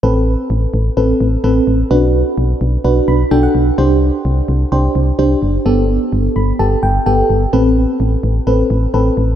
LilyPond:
<<
  \new Staff \with { instrumentName = "FM electric piano" } { \time 4/4 \key a \dorian \tempo 4 = 128 << { r1 | r2 r8 b''8 g''16 fis''8. | r1 | r4. b''8 a''8 g''8 g''4 |
r1 | } \\ { <c' a' b'>4. r8 <c' a' b'>4 <c' a' b'>4 | <d' fis' b'>4. r8 <d' fis' b'>4 <d' fis' a'>4 | <d' g' c''>4. r8 <d' g' c''>4 <d' g' c''>4 | <b g' a'>4. r8 <b g' a'>4 <b g' a'>4 |
<c' a' b'>4. r8 <c' a' b'>4 <c' a' b'>4 | } >> }
  \new Staff \with { instrumentName = "FM bass" } { \clef bass \time 4/4 \key a \dorian a,,4 a,,8 a,,8 a,,8 a,,8 a,,8 a,,8 | b,,4 b,,8 b,,8 b,,8 b,,8 b,,8 b,,8 | c,4 c,8 c,8 c,8 c,8 c,8 fis,,8 | g,,4 g,,8 g,,8 g,,8 g,,8 g,,8 g,,8 |
a,,4 a,,8 a,,8 a,,8 a,,8 a,,8 a,,8 | }
>>